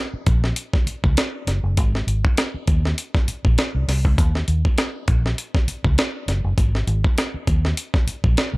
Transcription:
0.14 muted fingered electric bass stroke
0.26 A#1, kick, closed hi-hat
0.44 snare
0.56 closed hi-hat
0.73 kick, snare
0.87 muted fingered electric bass stroke, closed hi-hat
1.04 C#2, kick
1.17 snare, closed hi-hat
1.47 F#1, snare, closed hi-hat
1.63 F#1
1.77 G#1, kick, closed hi-hat
1.95 snare
2.07 G#1, closed hi-hat
2.25 kick
2.37 snare, closed hi-hat
2.54 muted fingered electric bass stroke
2.67 D#2, kick, closed hi-hat
2.85 snare
2.98 closed hi-hat
3.15 kick, snare
3.28 muted fingered electric bass stroke, closed hi-hat
3.45 A#1, kick
3.58 snare, closed hi-hat
3.75 C2
3.88 C2, snare, open hi-hat
4.05 C#2, kick
4.18 D#2, kick, closed hi-hat
4.35 snare
4.48 D#2, closed hi-hat
4.65 kick
4.78 snare, closed hi-hat
5.08 A#1, kick, closed hi-hat
5.26 snare
5.38 closed hi-hat
5.55 kick, snare
5.68 muted fingered electric bass stroke, closed hi-hat
5.85 C#2, kick
5.98 snare, closed hi-hat
6.28 F#1, snare, closed hi-hat
6.44 F#1
6.58 G#1, kick, closed hi-hat
6.75 snare
6.87 G#1, closed hi-hat
7.04 kick
7.18 snare, closed hi-hat
7.34 muted fingered electric bass stroke
7.47 D#2, kick, closed hi-hat
7.65 snare
7.77 closed hi-hat
7.94 kick, snare
8.07 muted fingered electric bass stroke, closed hi-hat
8.24 A#1, kick
8.37 snare, closed hi-hat
8.53 C2

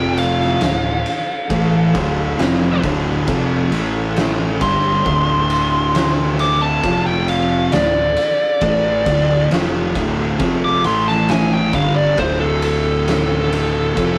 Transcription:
Already playing: F1 F2 C3 F3 G5
0.17 F5, ride
0.41 snare
0.61 D1 D2 A2, snare, ride
1.06 ride
1.50 A1 A2 E3 A3, kick, ride
1.95 D1 D2 A2 D3, kick, ride
2.39 F1 F2 C3 F3, snare, ride
2.83 D1 D2 A2 D3, kick, ride
3.27 F1 F2 C3 F3, kick, ride
3.72 A1 A2 E3 A3, ride
4.16 snare, ride
4.61 G1 G2 D3 G3 C6, kick, crash
5.05 D1 D2 A2 D3, kick
5.50 ride
5.95 snare, ride
6.39 D6, ride
6.61 A5
6.83 F1 F2 C3 F3, kick, ride
7.07 G5
7.28 F5, ride
7.72 D1 D2 A2 D5, snare, ride
8.17 ride
8.61 A1 A2 E3 A3, kick, ride
9.06 D1 D2 A2 D3, kick, ride
9.51 F1 F2 C3 F3, snare, ride
9.95 D1 D2 A2 D3, kick, ride
10.39 F1 F2 C3 F3, kick, ride
10.64 D6
10.84 A1 A2 E3 A3 C6, ride
11.08 A5, snare
11.28 G#5, snare, ride
11.54 G5
11.73 G1 G2 D3 G3 F5, kick, ride
11.96 D5
12.17 D1 D2 A2 D3 C5, kick, ride
12.40 A4
12.62 A4, ride
13.08 snare, ride
13.53 ride
13.97 F1 F2 C3 F3, kick, ride

